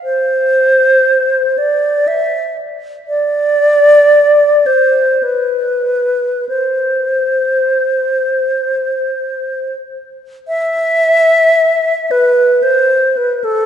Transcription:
0.04 C5
1.58 D5
2.08 E5
3.08 D5
4.66 C5
5.23 B4
6.49 C5
10.48 E5
12.11 B4
12.63 C5
13.17 B4
13.44 A4

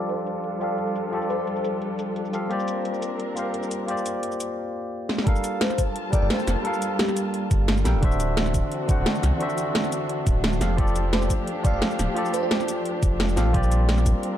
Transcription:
Already playing: F3 G3 D4 F4 G4 A4 D5
0.09 C5, closed hi-hat
0.18 shaker
0.27 closed hi-hat, shaker
0.44 closed hi-hat
0.59 F3 F4 G4 A4 D5, closed hi-hat, shaker
0.64 F5
0.70 D5
0.78 closed hi-hat
0.87 shaker
0.96 closed hi-hat, shaker
1.11 F3 F4 G4 A4, closed hi-hat
1.16 D5
1.22 shaker
1.30 C5, closed hi-hat, shaker
1.39 C5
1.47 closed hi-hat
1.56 shaker
1.64 closed hi-hat, shaker
1.82 closed hi-hat
1.99 closed hi-hat, shaker
2.16 closed hi-hat
2.25 shaker
2.32 F3 F4 G4 A4 F5, closed hi-hat, shaker
2.48 A#3 C4 D4 F4 G4 A#4 C5, closed hi-hat
2.53 D5
2.60 shaker
2.68 closed hi-hat, shaker
2.85 closed hi-hat
2.94 shaker
3.02 closed hi-hat, shaker
3.20 closed hi-hat
3.35 A#3 F4 G4 C5, closed hi-hat, shaker
3.39 F5
3.54 closed hi-hat
3.63 shaker
3.71 closed hi-hat, shaker
3.87 A#3 F4 G4 C5, closed hi-hat
3.91 D5
3.97 shaker
4.06 closed hi-hat, shaker
4.23 closed hi-hat
4.32 shaker
4.40 closed hi-hat, shaker
5.09 snare
5.18 snare
5.24 G3 A#3 D4 F4 A4 A#4 A5, kick, closed hi-hat
5.29 F5
5.36 shaker
5.44 closed hi-hat, shaker
5.61 C5, snare, closed hi-hat
5.70 snare, shaker
5.78 kick, closed hi-hat, shaker
5.96 closed hi-hat
6.11 G3 D4 A4 A#4 D5, kick, closed hi-hat, shaker
6.15 G5
6.22 G1 D5
6.30 C5, snare, closed hi-hat
6.39 shaker
6.47 F1, snare, closed hi-hat, shaker
6.62 G3 D4 A4 A#4, closed hi-hat
6.67 F5
6.74 shaker
6.82 closed hi-hat, shaker
6.99 G4, snare, closed hi-hat
7.08 snare, shaker
7.17 closed hi-hat, shaker
7.34 closed hi-hat
7.51 G1, kick, closed hi-hat, shaker
7.68 snare, closed hi-hat
7.77 shaker
7.84 A#1 G3 D4 A4 A#4 G5, snare, closed hi-hat, shaker
7.95 D1
8.01 D3 E3 C4 D4 F#4 C5, kick, closed hi-hat
8.05 E5
8.12 shaker
8.20 closed hi-hat, shaker
8.37 snare, closed hi-hat
8.46 snare, shaker
8.54 kick, closed hi-hat, shaker
8.72 closed hi-hat
8.87 D3 D4 F#4 C5, kick, closed hi-hat, shaker
8.91 F#5
8.98 D1
9.06 snare, closed hi-hat
9.15 shaker
9.23 C2, snare, closed hi-hat, shaker
9.38 D3 D4 F#4 C5, closed hi-hat
9.43 E5
9.50 shaker
9.58 closed hi-hat, shaker
9.75 snare, closed hi-hat
9.84 snare, shaker
9.92 closed hi-hat, shaker
10.09 closed hi-hat
10.27 D1, kick, closed hi-hat, shaker
10.44 snare, closed hi-hat
10.53 shaker
10.60 F1 F3 A3 F4 G4 A4 F5, snare, closed hi-hat, shaker
10.76 F3 F4 G4 A4, kick, closed hi-hat
10.81 D5
10.87 shaker
10.96 closed hi-hat, shaker
11.13 C5, snare, closed hi-hat
11.22 snare, shaker
11.30 kick, closed hi-hat, shaker
11.47 closed hi-hat
11.62 F3 F4 G4 A4 D5, kick, closed hi-hat, shaker
11.67 F5
11.74 F1 D5
11.82 snare, closed hi-hat
11.91 shaker
11.99 D1, snare, closed hi-hat, shaker
12.14 F3 F4 G4 A4, closed hi-hat
12.19 D5
12.25 shaker
12.34 C5, closed hi-hat, shaker
12.43 C5
12.51 snare, closed hi-hat
12.60 snare, shaker
12.68 closed hi-hat, shaker
12.86 closed hi-hat
13.03 F1, kick, closed hi-hat, shaker
13.20 snare, closed hi-hat
13.29 shaker
13.36 A1 F3 F4 G4 A4 F5, snare, closed hi-hat, shaker
13.46 A#1
13.52 G3 A#3 C4 F4 G4 A#4 C5, kick, closed hi-hat
13.57 D5
13.63 shaker
13.72 closed hi-hat, shaker
13.89 snare, closed hi-hat
13.98 snare, shaker
14.06 kick, closed hi-hat, shaker
14.23 closed hi-hat

